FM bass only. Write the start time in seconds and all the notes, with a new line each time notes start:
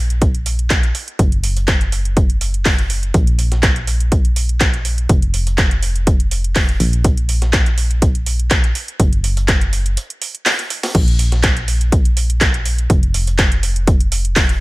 Already playing: A#1
1.19 F#1
3.14 A#1
5.09 F1
6.80 A#1
9.00 F#1
10.95 A#1
12.90 F1